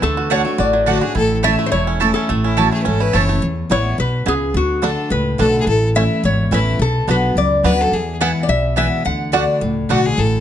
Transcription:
0.02 upright bass D2, steel-string acoustic guitar D3, five-string banjo A3, resonator guitar played with a steel bar A4
0.17 five-string banjo F#4
0.30 steel-string acoustic guitar D3 A3 D4 F#4, five-string banjo F#3, mandolin A3 F#4 D5 F#5, resonator guitar played with a steel bar C#5
0.45 five-string banjo A3, steel-string acoustic guitar D4 F#4
0.58 upright bass A1, steel-string acoustic guitar A2, five-string banjo F#4, resonator guitar played with a steel bar D5
0.73 five-string banjo F#3
0.86 steel-string acoustic guitar D3 A3 D4 F#4, mandolin A3 F#4 D5 F#5, five-string banjo D4, fiddle F#4
1.01 steel-string acoustic guitar D4 F#4, five-string banjo F#4, fiddle G#4
1.15 upright bass A1, steel-string acoustic guitar A2, five-string banjo E4, fiddle A4
1.43 steel-string acoustic guitar E3 A3 C#4 E4, mandolin A3 E4 C#5 A5, five-string banjo E4, resonator guitar played with a steel bar E5
1.59 five-string banjo A3
1.66 resonator guitar played with a steel bar C5
1.71 upright bass E1, steel-string acoustic guitar E2, five-string banjo E4, resonator guitar played with a steel bar C#5
1.87 five-string banjo C#4
2.00 steel-string acoustic guitar E3 A3 C#4 E4, mandolin A3 E4 C#5 A5, five-string banjo A4
2.14 five-string banjo C#4, resonator guitar played with a steel bar A4
2.29 upright bass A1, steel-string acoustic guitar A2, five-string banjo A3
2.44 five-string banjo C#4, fiddle E4
2.57 steel-string acoustic guitar E3 A3 C#4 E4, mandolin A3 E4 C#5 A5, five-string banjo E4, fiddle F#4
2.72 five-string banjo A3, fiddle G#4
2.82 upright bass G#1, steel-string acoustic guitar E2, five-string banjo C#4, fiddle B4
2.87 fiddle A4
3.00 five-string banjo E4, fiddle B4
3.13 upright bass F#1, steel-string acoustic guitar E3 A3 C#4 E4, mandolin A3 E4 C#5 A5, five-string banjo A4, fiddle C#5
3.29 five-string banjo A3, steel-string acoustic guitar C#4 E4
3.42 steel-string acoustic guitar E2, upright bass E2
3.70 upright bass A1, steel-string acoustic guitar E3 G#3 B3 E4, five-string banjo B3 E4, resonator guitar played with a steel bar C#5
3.98 upright bass B1, steel-string acoustic guitar B2, resonator guitar played with a steel bar B4
4.26 upright bass C#2, steel-string acoustic guitar C#3, five-string banjo B3 E4, resonator guitar played with a steel bar G#4
4.54 upright bass D2, steel-string acoustic guitar D3, resonator guitar played with a steel bar F#4
4.82 steel-string acoustic guitar D3 A3 D4 F#4, five-string banjo A3 D4 F#4, resonator guitar played with a steel bar A4
5.10 upright bass C#2, steel-string acoustic guitar A2, resonator guitar played with a steel bar B4
5.38 upright bass B1, steel-string acoustic guitar D3 A3 D4 F#4, five-string banjo A3 D4 F#4, fiddle A4
5.60 fiddle G#4
5.67 upright bass A1, steel-string acoustic guitar A2, fiddle A4
5.95 steel-string acoustic guitar E3 A3 C#4 E4, five-string banjo A3 C#4 E4, resonator guitar played with a steel bar E5
6.23 upright bass G#1, steel-string acoustic guitar E2, resonator guitar played with a steel bar C#5
6.51 upright bass A1, steel-string acoustic guitar E3 A3 C#4 E4, five-string banjo A3 C#4 E4, resonator guitar played with a steel bar B4
6.79 upright bass B1, steel-string acoustic guitar B2, resonator guitar played with a steel bar A4
7.07 upright bass B1, steel-string acoustic guitar F#3 B3 D4 F#4, five-string banjo B3 D4 F#4, resonator guitar played with a steel bar B4
7.35 upright bass C#2, steel-string acoustic guitar F#2, resonator guitar played with a steel bar D5
7.63 upright bass D2, steel-string acoustic guitar F#3 B3 D4 F#4, five-string banjo B3 D4 F#4, fiddle B4
7.81 fiddle A4
7.91 upright bass E2, steel-string acoustic guitar E2, fiddle G#4
8.21 steel-string acoustic guitar E3 G#3 B3 E4, mandolin B3 E4 B4 G#5, five-string banjo B3 E4, resonator guitar played with a steel bar F#5
8.43 resonator guitar played with a steel bar D5
8.48 upright bass B1, steel-string acoustic guitar B2, resonator guitar played with a steel bar E5
8.76 steel-string acoustic guitar E3 G#3 B3 E4, mandolin B3 E4 B4 G#5, five-string banjo B3 E4, resonator guitar played with a steel bar E5
9.05 upright bass D2, steel-string acoustic guitar D3, resonator guitar played with a steel bar F#5
9.32 steel-string acoustic guitar D3 A3 D4 F#4, mandolin A3 F#4 D5 F#5, five-string banjo A3 D4 F#4, resonator guitar played with a steel bar D5
9.61 upright bass C#2, steel-string acoustic guitar A2
9.89 upright bass B1, steel-string acoustic guitar D3 A3 D4 F#4, mandolin A3 F#4 D5 F#5, five-string banjo A3 D4 F#4, fiddle F#4
10.06 fiddle G#4
10.18 upright bass A1, steel-string acoustic guitar A2, fiddle A4

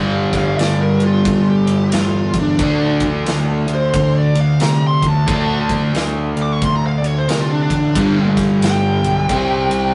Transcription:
Already playing: picked electric bass G1, overdriven electric guitar G2 D3 G3
0.33 picked electric bass G1, kick, snare, ride
0.37 lead electric guitar F5
0.59 picked electric bass G1, lead electric guitar D5, snare, ride
0.81 lead electric guitar A#4
1.00 picked electric bass G1, ride
1.05 lead electric guitar F4
1.25 picked electric bass G1, kick, ride
1.50 lead electric guitar G4
1.67 picked electric bass G1, ride
1.92 picked electric bass E2, lead electric guitar F4, snare, ride
2.34 picked electric bass E2, kick, ride
2.40 lead electric guitar D4
2.58 picked electric bass D2, overdriven electric guitar D3 A3 D4, kick, ride
3.00 picked electric bass D2, kick, ride
3.26 picked electric bass D2, snare, ride
3.67 picked electric bass D2, ride
3.75 lead electric guitar C5
3.94 picked electric bass D2, kick, ride
4.18 lead electric guitar D5
4.35 picked electric bass D2, ride
4.41 lead electric guitar F5
4.60 picked electric bass C3, lead electric guitar A#5, snare, ride
4.87 lead electric guitar C6
5.02 picked electric bass D2, kick, ride
5.08 lead electric guitar A5
5.26 picked electric bass D2, overdriven electric guitar D3 A3 D4, kick, ride
5.69 picked electric bass D2, kick, ride
5.94 picked electric bass D2, snare, ride
6.37 picked electric bass D2, ride
6.42 lead electric guitar D6
6.53 lead electric guitar C#6
6.62 picked electric bass D2, lead electric guitar C6, kick, ride
6.76 lead electric guitar A#5
6.87 lead electric guitar F5
6.98 picked electric bass D2, lead electric guitar D5
7.04 lead electric guitar C#5, ride
7.18 lead electric guitar C5
7.28 picked electric bass C3, lead electric guitar A#4, snare, ride
7.41 lead electric guitar F4
7.51 lead electric guitar D4
7.63 lead electric guitar D4
7.70 picked electric bass A1, kick, ride
7.95 picked electric bass G1, overdriven electric guitar G2 D3 G3, kick, ride
8.37 picked electric bass G1, kick, snare, ride
8.61 picked electric bass G1, lead electric guitar G5, snare, ride
9.03 picked electric bass B1, ride
9.29 picked electric bass C2, overdriven electric guitar C3 G3 C4, kick, ride
9.70 picked electric bass C2, ride

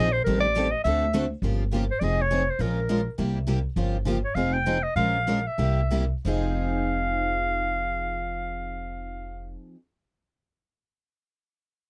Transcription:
Already playing: upright bass A#1, clarinet D#5
0.12 clarinet C5
0.24 upright bass A1, steel-string acoustic guitar D#3 G3 C4 G4 A4, clarinet A#4
0.41 clarinet D5
0.56 steel-string acoustic guitar D#3 G3 C4 G4 A4
0.71 clarinet D#5
0.84 upright bass D2, steel-string acoustic guitar D3 A3 C4 F#4 A4, clarinet E5
1.14 steel-string acoustic guitar D3 A3 C4 F#4 A4
1.42 upright bass G1, steel-string acoustic guitar C#3 F3 A#3 F4 G4
1.74 steel-string acoustic guitar C#3 F3 A#3 F4 G4
1.91 clarinet C5
1.99 upright bass F1, steel-string acoustic guitar F3 C4 D#4 G#4, clarinet D5
2.04 clarinet D#5
2.22 clarinet C#5
2.31 steel-string acoustic guitar F3 C4 D#4 G#4
2.50 clarinet C5
2.59 upright bass A#1, steel-string acoustic guitar F3 G#3 C#4 F4 A#4, clarinet A#4
2.89 steel-string acoustic guitar F3 G#3 C#4 F4 A#4
3.18 upright bass C2, steel-string acoustic guitar C3 G3 A#3 E4 G4
3.47 steel-string acoustic guitar C3 G3 A#3 E4 G4
3.76 upright bass G1, steel-string acoustic guitar C#3 F3 A#3 F4 G4
4.05 steel-string acoustic guitar C#3 F3 A#3 F4 G4
4.25 clarinet C#5
4.35 upright bass F1, steel-string acoustic guitar F3 C4 D#4 G#4, clarinet F5
4.53 clarinet G5
4.66 steel-string acoustic guitar F3 C4 D#4 G#4
4.83 clarinet D#5
4.96 upright bass A#1, steel-string acoustic guitar F3 G#3 C#4 F4 A#4, clarinet F5
5.27 steel-string acoustic guitar F3 G#3 C#4 F4 A#4
5.47 clarinet E5
5.58 upright bass C2, steel-string acoustic guitar C3 G3 A#3 E4 G4
5.91 steel-string acoustic guitar C3 G3 A#3 E4 G4
6.25 upright bass F1, steel-string acoustic guitar F3 C4 D#4 G#4, clarinet F5

